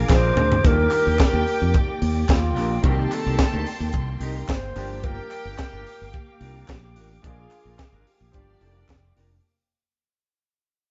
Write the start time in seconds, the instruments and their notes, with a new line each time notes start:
Already playing: grand piano F3 G#3 A#3 D4 G#4, string section F4 A#4 F5 G#5 D6
0.08 fingered electric bass A#1, grand piano F3 G#3 A#3 D4 G#4, muted clean electric guitar stroke, kick, snare, clap
0.12 alto flute C5
0.23 clean electric guitar D4 G#4 A#4
0.36 fingered electric bass D2, clean electric guitar D4 G#4 A#4, mid tom
0.50 muted clean electric guitar stroke, floor tom
0.63 fingered electric bass D#2, grand piano D#3 G3 A#3 D4 F4, string section A#3 G4 D5 G5, clean electric guitar D4 G4 A#4, alto flute A#4, kick, closed hi-hat
0.72 grand piano G4
0.77 muted clean electric guitar stroke
0.90 muted clean electric guitar stroke, clap, open hi-hat
1.04 fingered electric bass D#2, clean electric guitar D4 G4 A#4
1.16 muted clean electric guitar stroke, kick, snare, clap, closed hi-hat
1.20 alto flute A#4
1.31 fingered electric bass D#2, clean electric guitar D4 G4 A#4
1.44 muted clean electric guitar stroke, open hi-hat
1.59 fingered electric bass F2, muted clean electric guitar stroke
1.73 alto flute G4, muted clean electric guitar stroke, kick, closed hi-hat
1.88 muted clean electric guitar stroke
2.02 fingered electric bass D#2, open hi-hat
2.16 muted clean electric guitar stroke
2.29 fingered electric bass D#2, alto flute F4, kick, snare, clap, closed hi-hat
2.43 muted clean electric guitar stroke
2.56 fingered electric bass A#1, clean electric guitar D4 G4 A#4, snare, open hi-hat
2.72 muted clean electric guitar stroke
2.82 fingered electric bass C2, grand piano D#3 G3 A#3 C4 F#4, clean electric guitar D#4 G4, string section A4 A5 C6, kick, closed hi-hat
2.86 alto flute G4, clean electric guitar A#4
2.91 grand piano G4
2.99 muted clean electric guitar stroke
3.11 alto flute A4, muted clean electric guitar stroke, clap, open hi-hat
3.26 fingered electric bass C2, clean electric guitar D#4 G4 A#4
3.39 kick, snare, clap, closed hi-hat
3.54 fingered electric bass D2, clean electric guitar D#4 G4 A#4
3.66 muted clean electric guitar stroke, open hi-hat
3.80 fingered electric bass D#2, muted clean electric guitar stroke
3.93 fingered electric bass C2, muted clean electric guitar stroke, kick, closed hi-hat
4.08 muted clean electric guitar stroke
4.20 fingered electric bass C2, clean electric guitar D#4 G4 A#4, open hi-hat
4.36 clean electric guitar D#4 G4 A#4
4.48 fingered electric bass G1, alto flute C5, kick, snare, clap, closed hi-hat
4.63 muted clean electric guitar stroke
4.76 fingered electric bass G1, grand piano F3 G3 A#3 D4 G4, clean electric guitar D4 F4 A#4, string section G4 F5 G5 D6, open hi-hat
4.90 muted clean electric guitar stroke
5.03 clean electric guitar D4 F4 A#4, alto flute A#4, kick, closed hi-hat
5.18 muted clean electric guitar stroke
5.31 muted clean electric guitar stroke, clap, open hi-hat
5.45 fingered electric bass G1, clean electric guitar D4 F4 A#4
5.58 alto flute A#4, kick, snare, clap, closed hi-hat
5.73 fingered electric bass G1, clean electric guitar D4 F4 A#4
5.87 muted clean electric guitar stroke, open hi-hat
6.01 fingered electric bass G1, muted clean electric guitar stroke
6.12 alto flute G4, muted clean electric guitar stroke, kick, closed hi-hat
6.28 muted clean electric guitar stroke
6.41 fingered electric bass C2, clean electric guitar D4 F4 A#4, open hi-hat
6.56 clean electric guitar D4 F4 A#4
6.68 fingered electric bass A#1, alto flute G4, kick, snare, clap, closed hi-hat
6.83 muted clean electric guitar stroke
6.96 fingered electric bass A1, clean electric guitar D4 F4 A#4, open hi-hat
7.11 muted clean electric guitar stroke
7.22 fingered electric bass A#1, grand piano F3 G#3 A#3 D4 G#4, clean electric guitar D4 G#4 A#4, string section F4 F5, alto flute G#4, kick, closed hi-hat
7.27 string section F5 G#5
7.40 muted clean electric guitar stroke
7.51 muted clean electric guitar stroke, clap, open hi-hat
7.65 fingered electric bass A#1, clean electric guitar D4 G#4 A#4
7.79 alto flute G#4, kick, snare, clap, closed hi-hat
7.93 fingered electric bass G#1, clean electric guitar D4 G#4 A#4
8.06 alto flute G4, muted clean electric guitar stroke, open hi-hat
8.21 fingered electric bass A#1, muted clean electric guitar stroke
8.32 fingered electric bass G1, grand piano F3 G3 A#3 D4 G4, string section D4 D5 G5 D6, muted clean electric guitar stroke, kick, closed hi-hat
8.48 muted clean electric guitar stroke
8.60 fingered electric bass F1, clean electric guitar D4 F4 A#4, open hi-hat
8.76 clean electric guitar D4 F4 A#4
8.88 fingered electric bass F1, kick, snare, clap, closed hi-hat
9.04 muted clean electric guitar stroke
9.16 fingered electric bass F1, clean electric guitar D4 F4 A#4, snare, open hi-hat
9.31 muted clean electric guitar stroke